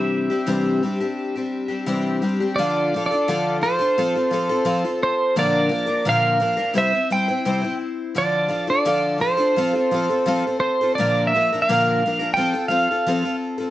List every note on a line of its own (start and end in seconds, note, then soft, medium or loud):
0.00 0.29 C3 medium
0.00 0.30 E3 medium
0.00 0.30 G3 medium
0.00 0.30 C4 medium
0.00 0.30 D4 medium
0.00 0.29 G4 medium
0.00 1.83 E5 loud
0.30 0.46 G3 medium
0.30 0.46 C4 medium
0.30 0.46 D4 medium
0.30 0.48 G4 medium
0.46 0.82 C3 medium
0.46 0.82 E3 medium
0.46 0.81 G3 medium
0.46 0.82 C4 medium
0.46 0.83 D4 loud
0.46 0.83 G4 loud
0.83 1.00 G3 medium
0.83 1.00 C4 medium
0.83 0.99 D4 medium
0.83 0.99 G4 medium
1.00 1.36 G3 soft
1.00 1.36 C4 medium
1.00 1.35 D4 medium
1.00 1.34 G4 medium
1.36 1.70 G3 medium
1.36 1.69 C4 medium
1.36 1.68 D4 soft
1.36 1.67 G4 medium
1.68 1.86 G3 soft
1.68 1.87 C4 soft
1.68 1.86 D4 medium
1.68 1.87 G4 medium
1.86 2.22 C3 medium
1.86 2.22 E3 medium
1.86 2.21 G3 medium
1.86 2.22 C4 medium
1.86 2.22 D4 loud
1.86 2.23 G4 loud
2.22 2.40 G3 medium
2.22 2.40 C4 medium
2.22 2.39 D4 medium
2.22 2.39 G4 medium
2.40 2.58 G3 soft
2.40 2.58 C4 soft
2.40 2.57 D4 medium
2.40 2.58 G4 medium
2.56 2.93 D3 medium
2.56 2.93 F3 medium
2.56 2.93 D4 medium
2.56 2.93 F4 medium
2.56 2.93 A4 medium
2.56 3.05 D5 medium
2.94 3.11 F3 medium
2.94 3.12 D4 medium
2.94 3.10 F4 medium
2.94 3.09 A4 medium
3.06 3.57 D5 medium
3.11 3.28 D4 soft
3.11 3.28 F4 medium
3.11 3.28 A4 medium
3.28 3.62 D3 medium
3.28 3.60 F3 medium
3.28 3.61 D4 loud
3.28 3.62 F4 medium
3.28 3.63 A4 loud
3.61 3.79 F3 medium
3.61 3.80 D4 medium
3.61 3.79 F4 medium
3.61 3.78 A4 medium
3.61 5.02 C5 medium
3.79 3.97 D4 soft
3.79 3.97 F4 medium
3.79 3.97 A4 medium
3.98 4.15 F3 medium
3.98 4.15 C4 medium
3.98 4.15 F4 medium
3.98 4.14 A4 medium
4.15 4.31 C4 soft
4.15 4.32 F4 soft
4.15 4.32 A4 medium
4.31 4.49 F3 medium
4.31 4.50 C4 medium
4.31 4.50 F4 medium
4.31 4.48 A4 medium
4.49 4.64 C4 medium
4.49 4.65 F4 medium
4.49 4.65 A4 medium
4.65 4.83 F3 medium
4.65 4.84 C4 medium
4.65 4.83 F4 medium
4.65 4.83 A4 loud
4.84 5.36 C4 medium
4.84 5.37 F4 medium
4.84 5.36 A4 medium
5.03 5.38 C5 medium
5.36 5.71 A#2 medium
5.36 5.72 D3 medium
5.36 5.68 F3 medium
5.36 5.68 A#3 medium
5.36 5.70 D4 medium
5.36 5.70 A#4 medium
5.36 6.09 D5 loud
5.69 5.88 F3 medium
5.69 5.88 A#3 medium
5.69 5.86 D4 medium
5.69 5.85 A#4 medium
5.86 6.05 F3 soft
5.86 6.05 A#3 medium
5.86 6.05 D4 medium
5.86 6.05 A#4 medium
6.05 6.41 A#2 medium
6.05 6.41 D3 medium
6.05 6.39 F3 medium
6.05 6.39 A#3 loud
6.05 6.40 D4 medium
6.05 6.41 A#4 medium
6.05 6.73 F5 loud
6.40 6.58 F3 medium
6.40 6.58 A#3 medium
6.40 6.58 D4 medium
6.40 6.56 A#4 medium
6.57 6.74 F3 medium
6.57 6.75 A#3 medium
6.57 6.75 D4 medium
6.57 6.75 A#4 medium
6.74 6.92 C3 medium
6.74 6.92 G3 medium
6.74 6.93 C4 medium
6.74 6.93 E4 medium
6.74 6.91 C5 loud
6.78 7.09 E5 loud
6.92 7.10 C4 soft
6.92 7.10 E4 medium
6.92 7.10 C5 medium
7.10 7.28 G3 medium
7.10 7.28 C4 medium
7.10 7.29 E4 medium
7.10 7.27 C5 medium
7.10 7.77 G5 loud
7.28 7.45 C4 soft
7.28 7.46 E4 medium
7.28 7.46 C5 medium
7.45 7.63 C3 medium
7.45 7.63 G3 medium
7.45 7.63 C4 medium
7.45 7.63 E4 medium
7.45 7.60 C5 medium
7.62 8.15 C4 soft
7.62 8.15 E4 medium
7.62 8.15 C5 medium
8.15 8.50 D3 medium
8.15 8.47 F3 medium
8.15 8.48 D4 medium
8.15 8.48 F4 medium
8.15 8.49 A4 loud
8.15 8.69 D5 medium
8.48 8.67 F3 medium
8.48 8.67 D4 medium
8.48 8.67 F4 medium
8.48 8.66 A4 medium
8.67 8.85 D4 medium
8.67 8.85 F4 medium
8.67 8.85 A4 medium
8.67 9.21 D5 medium
8.85 9.20 D3 medium
8.85 9.17 F3 medium
8.85 9.19 D4 loud
8.85 9.19 F4 medium
8.85 9.20 A4 medium
9.18 9.37 F3 medium
9.18 9.37 D4 medium
9.18 9.37 F4 medium
9.18 9.36 A4 medium
9.18 10.59 C5 loud
9.37 9.56 D4 medium
9.37 9.55 F4 medium
9.37 9.55 A4 medium
9.56 9.73 F3 medium
9.56 9.74 C4 medium
9.56 9.74 F4 medium
9.56 9.72 A4 medium
9.73 9.91 C4 medium
9.73 9.91 F4 medium
9.73 9.90 A4 medium
9.91 10.08 F3 medium
9.91 10.08 C4 medium
9.91 10.09 F4 medium
9.91 10.08 A4 medium
10.10 10.26 C4 medium
10.10 10.26 F4 medium
10.10 10.26 A4 medium
10.26 10.43 F3 medium
10.26 10.43 C4 loud
10.26 10.44 F4 loud
10.26 10.44 A4 loud
10.47 10.80 C4 soft
10.47 10.80 F4 soft
10.47 10.80 A4 medium
10.60 10.92 C5 medium
10.81 10.98 C4 soft
10.81 10.98 F4 soft
10.81 10.97 A4 medium
10.95 11.31 A#2 medium
10.95 11.32 D3 medium
10.95 11.27 D5 medium
11.00 11.32 F3 medium
11.00 11.32 A#3 medium
11.00 11.32 D4 medium
11.00 11.32 A#4 medium
11.27 11.62 E5 medium
11.34 11.50 F3 medium
11.34 11.50 A#3 medium
11.34 11.51 D4 medium
11.34 11.50 A#4 medium
11.52 11.68 F3 soft
11.52 11.68 A#3 soft
11.52 11.68 D4 medium
11.52 11.67 A#4 medium
11.62 12.33 F5 loud
11.69 12.02 A#2 medium
11.69 12.02 D3 medium
11.69 12.02 F3 medium
11.69 12.02 A#3 medium
11.69 12.02 D4 medium
11.69 12.03 A#4 loud
12.06 12.20 F3 medium
12.06 12.20 A#3 medium
12.06 12.20 D4 medium
12.06 12.18 A#4 medium
12.19 12.35 F3 soft
12.19 12.37 A#3 soft
12.19 12.37 D4 medium
12.19 12.36 A#4 medium
12.34 12.53 F3 medium
12.34 12.54 C4 medium
12.34 12.53 F4 medium
12.34 12.68 G5 loud
12.39 12.52 A4 medium
12.54 12.69 C4 soft
12.54 12.70 F4 medium
12.54 12.70 A4 medium
12.68 12.87 F3 medium
12.68 12.87 C4 medium
12.68 12.88 F4 medium
12.68 12.88 A4 medium
12.68 13.35 F5 loud
12.91 13.07 C4 soft
12.91 13.06 F4 soft
12.91 13.06 A4 medium
13.06 13.23 F3 medium
13.06 13.24 C4 medium
13.06 13.24 F4 medium
13.06 13.22 A4 medium
13.23 13.59 C4 soft
13.23 13.59 F4 medium
13.23 13.57 A4 medium
13.58 13.70 C4 soft
13.58 13.70 F4 soft
13.58 13.70 A4 medium